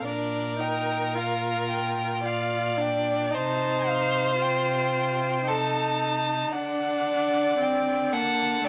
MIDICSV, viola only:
0, 0, Header, 1, 2, 480
1, 0, Start_track
1, 0, Tempo, 1092896
1, 24, Time_signature, 3, 2, 24, 8
1, 1464, Tempo, 1065719
1, 3875, End_track
2, 0, Start_track
2, 0, Title_t, "Viola"
2, 0, Program_c, 0, 41
2, 23, Note_on_c, 0, 62, 39
2, 258, Note_off_c, 0, 62, 0
2, 260, Note_on_c, 0, 63, 41
2, 505, Note_on_c, 0, 65, 38
2, 512, Note_off_c, 0, 63, 0
2, 982, Note_off_c, 0, 65, 0
2, 985, Note_on_c, 0, 65, 44
2, 1218, Note_on_c, 0, 62, 43
2, 1225, Note_off_c, 0, 65, 0
2, 1449, Note_on_c, 0, 63, 43
2, 1456, Note_off_c, 0, 62, 0
2, 1933, Note_off_c, 0, 63, 0
2, 1936, Note_on_c, 0, 65, 42
2, 2415, Note_off_c, 0, 65, 0
2, 2425, Note_on_c, 0, 63, 45
2, 2903, Note_on_c, 0, 62, 49
2, 2909, Note_off_c, 0, 63, 0
2, 3375, Note_off_c, 0, 62, 0
2, 3378, Note_on_c, 0, 60, 49
2, 3621, Note_on_c, 0, 58, 48
2, 3628, Note_off_c, 0, 60, 0
2, 3850, Note_off_c, 0, 58, 0
2, 3852, Note_on_c, 0, 57, 49
2, 3875, Note_off_c, 0, 57, 0
2, 3875, End_track
0, 0, End_of_file